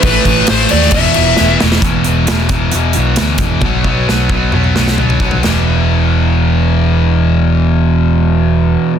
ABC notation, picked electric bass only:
X:1
M:4/4
L:1/8
Q:1/4=133
K:Bphr
V:1 name="Picked electric bass" clef=bass
A,,, A,,, A,,, ^D,, E,,, E,,, E,,, E,,, | E,,, E,,, E,,, E,,, E,,, B,,, D,, E,,, | B,,, B,,, B,,, B,,, B,,, B,,, B,,, B,,, | E,,,8- |
E,,,8 |]